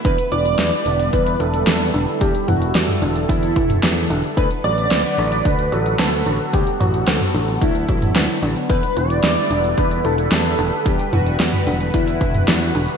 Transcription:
0.05 picked electric bass E2, analog synth pad D3 G3 B3 E4 B4, synth arpeggio sound D3, analog synth lead B4, kick, closed hi-hat
0.18 closed hi-hat
0.32 picked electric bass E1, synth arpeggio sound E3, analog synth lead D5, closed hi-hat
0.45 closed hi-hat
0.59 picked electric bass E2, synth arpeggio sound G3, snare, closed hi-hat
0.72 closed hi-hat
0.86 picked electric bass E1, synth arpeggio sound D3, closed hi-hat
0.99 closed hi-hat
1.13 picked electric bass E2, synth arpeggio sound D3, analog synth lead B4, kick, closed hi-hat
1.27 closed hi-hat
1.40 picked electric bass E1, synth arpeggio sound E3, analog synth lead A4, closed hi-hat
1.54 closed hi-hat
1.67 picked electric bass E2, synth arpeggio sound G3, snare, closed hi-hat
1.81 closed hi-hat
1.94 picked electric bass E1, synth arpeggio sound D3, closed hi-hat
2.21 picked electric bass E2, synth arpeggio sound D3, analog synth lead G4, analog synth pad A4, kick, closed hi-hat
2.35 closed hi-hat
2.48 picked electric bass E1, synth arpeggio sound E3, analog synth lead F#4, closed hi-hat, mid tom
2.62 closed hi-hat
2.75 picked electric bass E2, synth arpeggio sound G3, snare, closed hi-hat
2.89 closed hi-hat, mid tom
3.02 picked electric bass E1, synth arpeggio sound D3, closed hi-hat
3.16 closed hi-hat
3.29 picked electric bass E2, synth arpeggio sound D3, analog synth lead E4, kick, closed hi-hat
3.43 closed hi-hat
3.56 picked electric bass E1, synth arpeggio sound E3, kick, closed hi-hat
3.70 closed hi-hat, mid tom
3.83 picked electric bass E2, synth arpeggio sound G3, snare, closed hi-hat
3.97 closed hi-hat
4.10 picked electric bass E1, synth arpeggio sound D3, closed hi-hat
4.24 closed hi-hat
4.37 picked electric bass D2, synth arpeggio sound D3, analog synth pad D3 F#3 F#4 B4, analog synth lead B4, kick, closed hi-hat
4.51 closed hi-hat
4.64 picked electric bass A1, synth arpeggio sound F#3, analog synth lead D5, closed hi-hat
4.78 closed hi-hat
4.91 picked electric bass D2, synth arpeggio sound B3, snare, closed hi-hat
5.05 closed hi-hat
5.18 picked electric bass A1, synth arpeggio sound D3, closed hi-hat
5.32 closed hi-hat
5.45 picked electric bass D2, synth arpeggio sound D3, analog synth lead B4, kick, closed hi-hat
5.59 closed hi-hat
5.72 picked electric bass A1, synth arpeggio sound F#3, analog synth lead A4, closed hi-hat
5.86 closed hi-hat
5.99 picked electric bass D2, synth arpeggio sound B3, snare, closed hi-hat
6.13 closed hi-hat
6.26 picked electric bass A1, synth arpeggio sound D3, closed hi-hat
6.53 picked electric bass D2, synth arpeggio sound D3, analog synth lead G4, analog synth pad A4, kick, closed hi-hat
6.67 closed hi-hat
6.80 picked electric bass A1, synth arpeggio sound F#3, analog synth lead F#4, closed hi-hat, mid tom
6.94 closed hi-hat
7.07 picked electric bass D2, synth arpeggio sound B3, snare, closed hi-hat
7.21 closed hi-hat, mid tom
7.34 picked electric bass A1, synth arpeggio sound D3, closed hi-hat
7.48 closed hi-hat
7.61 picked electric bass D2, synth arpeggio sound D3, analog synth lead E4, kick, closed hi-hat
7.75 closed hi-hat
7.88 picked electric bass A1, synth arpeggio sound F#3, kick, closed hi-hat
8.02 closed hi-hat, mid tom
8.16 picked electric bass D2, synth arpeggio sound B3, snare, closed hi-hat
8.29 closed hi-hat
8.43 picked electric bass A1, synth arpeggio sound D3, closed hi-hat
8.56 closed hi-hat
8.69 picked electric bass E2, synth arpeggio sound D3, analog synth pad G3 E4 B4, analog synth lead B4, kick, closed hi-hat
8.83 closed hi-hat
8.97 picked electric bass E1, synth arpeggio sound E3, analog synth lead D5, closed hi-hat
9.10 closed hi-hat
9.24 picked electric bass E2, synth arpeggio sound G3, snare, closed hi-hat
9.37 closed hi-hat
9.51 picked electric bass E1, synth arpeggio sound D3, closed hi-hat
9.64 closed hi-hat
9.78 picked electric bass E2, synth arpeggio sound D3, analog synth lead B4, kick, closed hi-hat
9.91 closed hi-hat
10.05 picked electric bass E1, synth arpeggio sound E3, analog synth lead A4, closed hi-hat
10.18 closed hi-hat
10.32 picked electric bass E2, synth arpeggio sound G3, snare, closed hi-hat
10.45 closed hi-hat
10.59 picked electric bass E1, synth arpeggio sound D3, closed hi-hat
10.86 picked electric bass E2, synth arpeggio sound D3, analog synth pad F#4, analog synth lead G4, kick, closed hi-hat
10.99 closed hi-hat
11.13 picked electric bass E1, synth arpeggio sound E3, analog synth lead F#4, closed hi-hat, mid tom
11.26 closed hi-hat
11.40 picked electric bass E2, synth arpeggio sound G3, snare, closed hi-hat
11.53 closed hi-hat, mid tom
11.67 picked electric bass E1, synth arpeggio sound D3, closed hi-hat
11.80 closed hi-hat
11.94 picked electric bass E2, synth arpeggio sound D3, analog synth lead E4, kick, closed hi-hat
12.07 closed hi-hat
12.21 picked electric bass E1, synth arpeggio sound E3, kick, closed hi-hat
12.35 closed hi-hat, mid tom
12.48 picked electric bass E2, synth arpeggio sound G3, snare, closed hi-hat
12.62 closed hi-hat
12.75 picked electric bass E1, synth arpeggio sound D3, closed hi-hat
12.89 closed hi-hat

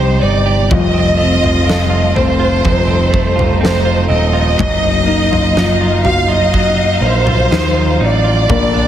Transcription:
Already playing: picked electric bass C2, upright piano C3 G3 D#4, clean electric guitar C3 C4 D#4 G4, string section G3 C4 D#4, violin section C5
0.21 picked electric bass G1, clean electric guitar D#4, violin section D5
0.46 clean electric guitar G4
0.70 picked electric bass F1, clean electric guitar F2, upright piano F3, string section A3 F4, violin section D#5, kick, floor tom
0.93 clean electric guitar C4
1.17 clean electric guitar A3, upright piano C4
1.41 picked electric bass F1, clean electric guitar F4, floor tom
1.66 clean electric guitar C4, upright piano A4, snare
1.90 clean electric guitar F4
2.15 picked electric bass F1, clean electric guitar C4, upright piano C4, violin section C5, floor tom
2.40 clean electric guitar F4
2.64 picked electric bass F1, clean electric guitar F2, string section D#4, kick, floor tom
2.87 clean electric guitar C4
3.11 clean electric guitar A3, kick
3.36 clean electric guitar F4, floor tom
3.61 clean electric guitar C4, upright piano A4, violin section C5, snare
3.85 clean electric guitar F4
4.09 picked electric bass D#1, clean electric guitar C4, violin section D#5
4.33 clean electric guitar F4
4.58 clean electric guitar F#3, string section F#3 F5, upright piano F#3, kick, floor tom
4.83 clean electric guitar D#4
5.06 clean electric guitar A#3, upright piano D#4
5.31 picked electric bass F#1, clean electric guitar F4, floor tom
5.56 clean electric guitar D#4, upright piano F4, snare
5.81 clean electric guitar F4
6.05 clean electric guitar D#4, upright piano F#4, violin section F5, floor tom
6.28 clean electric guitar F4, violin section D#5
6.53 clean electric guitar F#3, kick
6.77 clean electric guitar D#4
7.01 picked electric bass A#1, clean electric guitar A#3, violin section C5
7.26 clean electric guitar F4, floor tom
7.51 picked electric bass D#2, clean electric guitar D#4, upright piano D#4, snare
7.75 clean electric guitar F4
8.00 picked electric bass A1, clean electric guitar D#4, violin section D5
8.24 clean electric guitar F4
8.48 picked electric bass A#1, clean electric guitar A#2, string section A#3 D4 A4, upright piano A#3, kick, floor tom
8.74 clean electric guitar D4

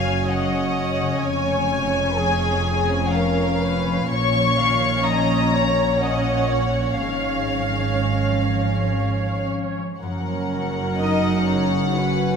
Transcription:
Already playing: double bass section F#1, cello section F#2, harp F#2 F#3 C#4 C#5, viola section C#4 C#5, violin section F5 G#5
0.07 harp C#3
0.30 harp C#4, violin section D#5 F#5
0.54 harp C#5
0.78 harp C#4
1.02 harp C#3
1.23 double bass section F1, cello section F2, violin section C#5 G#5
1.48 harp G#3
1.72 harp F#4
1.96 harp G#3
2.18 harp C#4, violin section G#4
2.43 harp F3
2.66 harp C#4
2.90 harp F3
3.13 harp C#4, violin section A#4 F5
3.37 harp C#5
3.61 harp C#4, violin section B4
3.87 harp F3
4.09 double bass section A#1, cello section A#2, harp A#2, viola section C#4 C#5, violin section C#5 C#6
4.35 harp F3
4.58 harp D#3, violin section F5
4.82 harp F3
5.05 harp C#4, violin section D#5 A#5
5.30 harp A#3
5.54 harp C#4, violin section C#5
5.79 harp A#3
6.02 harp C#4, violin section D#5 F#5
6.28 harp C#5
6.51 harp C#4, violin section C#5
6.76 harp A#3
7.00 double bass section G#1, cello section G#2, harp G#2, violin section F5
7.27 harp G#3
7.52 harp F#3
7.78 harp G#3
8.03 harp C#4
8.28 harp F3
8.53 harp C#4
8.78 harp F3
9.04 harp C#4
9.28 harp C#5
9.53 harp C#4
9.78 harp F3
10.01 double bass section F#1, cello section F#2, harp F#2, viola section C#4 A#4, violin section F#5
10.27 harp F#3
10.52 harp G#3
10.98 harp C#4, viola section D#4, violin section D#5
11.23 harp C#3
11.47 harp C#4, violin section C#5
11.71 harp C#3
11.95 viola section C#4 F#4, harp C#4, violin section B4
12.20 harp C#5

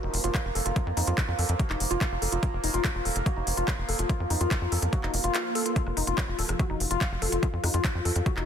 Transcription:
Already playing: synth texture F3 A#3
0.03 analog synth bass F1, synth arpeggio sound D#4
0.14 analog synth bass F1, open hi-hat
0.24 analog synth bass F1, synth arpeggio sound F4, closed hi-hat
0.34 synth arpeggio sound F5, kick, clap, closed hi-hat
0.45 analog synth bass F1
0.55 analog synth bass F1, synth arpeggio sound A4, open hi-hat
0.66 analog synth bass F1, synth arpeggio sound F4, closed hi-hat
0.76 synth arpeggio sound F4, kick, closed hi-hat
0.87 analog synth bass F2
0.97 analog synth bass F2, synth arpeggio sound D#4, open hi-hat
1.07 analog synth bass F2, synth arpeggio sound F4, closed hi-hat
1.18 kick, clap, closed hi-hat
1.28 analog synth bass F2, synth arpeggio sound F4
1.39 analog synth bass F2, synth arpeggio sound A4, open hi-hat
1.49 analog synth bass F2, closed hi-hat
1.59 synth arpeggio sound F#4, kick, closed hi-hat
1.70 analog synth bass F1, synth arpeggio sound D#4, clap
1.80 analog synth bass F1, open hi-hat
1.91 analog synth bass F1, synth arpeggio sound F4, closed hi-hat
2.01 synth arpeggio sound F5, kick, clap, closed hi-hat
2.12 analog synth bass F1
2.22 analog synth bass F1, synth arpeggio sound A4, open hi-hat
2.32 analog synth bass F1, synth arpeggio sound F4, closed hi-hat
2.43 kick, closed hi-hat
2.53 analog synth bass F1
2.64 analog synth bass F1, synth arpeggio sound D#4, open hi-hat
2.74 analog synth bass F1, synth arpeggio sound F4, closed hi-hat
2.84 kick, clap, closed hi-hat
2.95 analog synth bass F1, synth arpeggio sound F4
3.05 analog synth bass D#1, synth arpeggio sound A4, open hi-hat
3.16 analog synth bass F1, closed hi-hat
3.26 synth arpeggio sound F#4, kick, closed hi-hat
3.37 analog synth bass F1, synth arpeggio sound D#4
3.47 analog synth bass F1, open hi-hat
3.57 analog synth bass F1, synth arpeggio sound F4, closed hi-hat
3.68 synth arpeggio sound F5, kick, clap, closed hi-hat
3.78 analog synth bass F1
3.89 analog synth bass F1, synth arpeggio sound A4, open hi-hat
3.99 analog synth bass F1, synth arpeggio sound F4, closed hi-hat
4.09 synth arpeggio sound F4, kick, closed hi-hat
4.20 analog synth bass F2
4.30 analog synth bass F2, synth arpeggio sound D#4, open hi-hat
4.41 analog synth bass F2, synth arpeggio sound F4, closed hi-hat
4.51 kick, clap, closed hi-hat
4.62 analog synth bass F2, synth arpeggio sound F4
4.72 analog synth bass F2, synth arpeggio sound A4, open hi-hat
4.82 analog synth bass F2, closed hi-hat
4.93 synth arpeggio sound F#4, kick, closed hi-hat
5.03 analog synth bass F1, synth arpeggio sound D#4, clap
5.14 analog synth bass F1, open hi-hat
5.24 analog synth bass F1, synth arpeggio sound F4, closed hi-hat
5.34 synth arpeggio sound F5, clap, closed hi-hat
5.55 synth arpeggio sound A4, open hi-hat
5.66 synth arpeggio sound F4, closed hi-hat
5.76 synth texture F3 F4, synth arpeggio sound F4, kick, closed hi-hat
5.87 analog synth bass F1, cross-stick
5.97 analog synth bass F1, synth arpeggio sound D#4, open hi-hat
6.07 analog synth bass F1, synth arpeggio sound F4, closed hi-hat
6.18 kick, clap, closed hi-hat
6.28 analog synth bass F1, synth arpeggio sound F4
6.39 analog synth bass D#1, synth arpeggio sound A4, open hi-hat
6.49 analog synth bass F1, cross-stick, closed hi-hat
6.59 synth arpeggio sound F#4, kick, closed hi-hat
6.70 analog synth bass F1, synth arpeggio sound D#4
6.80 analog synth bass F1, open hi-hat
6.91 analog synth bass F1, synth arpeggio sound F4, closed hi-hat
7.01 synth arpeggio sound F5, kick, cross-stick, clap, closed hi-hat
7.12 analog synth bass F1
7.22 analog synth bass F1, synth arpeggio sound A4, open hi-hat
7.32 analog synth bass F1, synth arpeggio sound F4, closed hi-hat
7.43 synth arpeggio sound F4, kick, closed hi-hat
7.53 analog synth bass F2
7.64 analog synth bass F2, synth arpeggio sound D#4, cross-stick, open hi-hat
7.74 analog synth bass F2, synth arpeggio sound F4, closed hi-hat
7.84 kick, clap, closed hi-hat
7.95 analog synth bass F2, synth arpeggio sound F4
8.05 analog synth bass F2, synth arpeggio sound A4, open hi-hat
8.16 analog synth bass F2, cross-stick, closed hi-hat
8.26 synth arpeggio sound F#4, kick, closed hi-hat
8.37 analog synth bass F1, synth arpeggio sound D#4, clap

